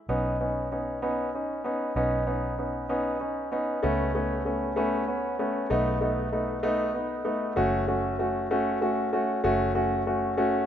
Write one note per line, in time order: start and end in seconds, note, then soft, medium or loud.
0.09 1.92 B1 medium
0.09 0.35 B3 medium
0.09 0.35 C#4 medium
0.09 0.35 D#4 medium
0.40 0.66 B3 medium
0.40 0.66 C#4 medium
0.40 0.67 D#4 medium
0.72 0.98 B3 medium
0.72 0.98 C#4 medium
0.72 0.98 D#4 medium
1.02 1.28 B3 medium
1.02 1.29 C#4 medium
1.02 1.29 D#4 medium
1.35 1.60 C#4 medium
1.35 1.61 D#4 medium
1.64 1.91 B3 medium
1.64 1.91 C#4 medium
1.64 1.91 D#4 medium
1.96 3.79 B1 medium
1.96 2.22 B3 medium
1.96 2.22 C#4 medium
1.96 2.23 D#4 medium
2.27 2.53 B3 medium
2.27 2.53 C#4 medium
2.27 2.53 D#4 medium
2.58 2.84 B3 medium
2.58 2.85 C#4 medium
2.58 2.85 D#4 medium
2.89 3.16 B3 medium
2.89 3.16 C#4 medium
2.89 3.16 D#4 medium
3.20 3.47 C#4 medium
3.20 3.47 D#4 medium
3.52 3.78 B3 medium
3.52 3.78 C#4 medium
3.52 3.78 D#4 medium
3.83 5.67 C#2 medium
3.83 4.09 A3 medium
3.83 4.09 B3 medium
3.83 4.09 C#4 medium
4.15 4.41 A3 medium
4.15 4.41 B3 medium
4.15 4.41 C#4 medium
4.45 4.72 A3 medium
4.45 4.72 B3 medium
4.45 4.72 C#4 medium
4.76 5.03 A3 medium
4.76 5.03 B3 medium
4.76 5.03 C#4 medium
5.08 5.34 B3 medium
5.08 5.34 C#4 medium
5.39 5.65 A3 medium
5.39 5.65 B3 medium
5.39 5.66 C#4 medium
5.70 7.54 B1 loud
5.70 5.96 A3 medium
5.70 5.97 B3 medium
5.70 5.97 D#4 loud
6.01 6.27 A3 medium
6.01 6.28 B3 medium
6.01 6.28 D#4 medium
6.33 6.59 A3 medium
6.33 6.59 B3 medium
6.33 6.59 D#4 medium
6.63 6.90 A3 medium
6.63 6.90 B3 medium
6.63 6.90 D#4 loud
6.94 7.21 B3 medium
6.94 7.21 D#4 medium
7.25 7.52 A3 medium
7.25 7.52 B3 medium
7.25 7.52 D#4 medium
7.56 9.41 F#1 loud
7.56 7.83 A3 medium
7.56 7.83 C#4 medium
7.56 7.83 F#4 loud
7.88 8.14 A3 medium
7.88 8.15 C#4 medium
7.88 8.15 F#4 medium
8.19 8.46 A3 medium
8.19 8.46 C#4 medium
8.19 8.46 F#4 medium
8.51 8.77 A3 medium
8.51 8.77 C#4 medium
8.51 8.77 F#4 medium
8.81 9.08 A3 medium
8.81 9.08 C#4 medium
8.81 9.08 F#4 medium
9.13 9.39 A3 medium
9.13 9.39 C#4 medium
9.13 9.39 F#4 medium
9.44 10.66 F#1 loud
9.44 9.70 A3 medium
9.44 9.71 C#4 medium
9.44 9.71 F#4 loud
9.75 10.01 A3 medium
9.75 10.02 C#4 medium
9.75 10.02 F#4 medium
10.07 10.33 A3 medium
10.07 10.33 C#4 medium
10.07 10.33 F#4 medium
10.37 10.64 A3 medium
10.37 10.64 C#4 medium
10.37 10.64 F#4 medium